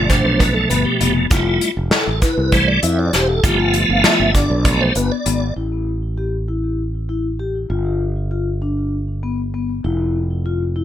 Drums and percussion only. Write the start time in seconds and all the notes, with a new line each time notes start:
0.10 kick, snare, closed hi-hat, shaker
0.40 kick, closed hi-hat, shaker
0.70 closed hi-hat, shaker
1.01 closed hi-hat
1.31 kick, closed hi-hat, shaker
1.61 closed hi-hat
1.91 snare, closed hi-hat
2.22 kick, closed hi-hat, shaker
2.52 kick, closed hi-hat, shaker
2.83 closed hi-hat, shaker
3.13 snare, closed hi-hat
3.44 kick, closed hi-hat, shaker
3.74 closed hi-hat
4.04 snare, closed hi-hat, shaker
4.35 kick, closed hi-hat, shaker
4.65 kick, closed hi-hat
4.95 closed hi-hat, shaker
5.26 closed hi-hat